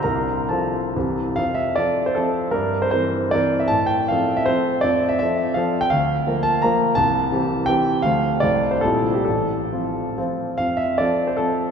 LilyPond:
<<
  \new Staff \with { instrumentName = "Grand piano" } { \time 3/4 \key f \major \tempo 4 = 157 <bes' bes''>4 <a' a''>4 r4 | f''8 e''8 d''8. c''16 a'4 | bes'8. c''16 c''4 d''8. e''16 | a''8 g''8 f''8. e''16 c''4 |
d''8. e''16 e''4 f''8. g''16 | f''4. a''8 bes''4 | a''2 g''4 | f''4 d''8. c''16 a'8. g'16 |
a'2 r4 | f''8 e''8 d''8. c''16 a'4 | }
  \new Staff \with { instrumentName = "Grand piano" } { \time 3/4 \key f \major c,4 <f c' f'>4 <c, e c' g'>4 | f,4 <f c' a'>4 <f c'>4 | g,4 <e c' bes'>4 <e c' bes'>4 | a,4 <f c' a'>4 <f c' a'>4 |
f,4 <f c' a'>4 <f c' a'>4 | d,4 <f bes bes'>4 <f bes bes'>4 | c,4 <e c' g'>4 <e c' g'>4 | <d, f a f'>4 <c, f a f'>4 <bes,, g c' e'>4 |
a,,4 <f c' f'>4 <f c' f'>4 | f,4 <f c' a'>4 <f c'>4 | }
>>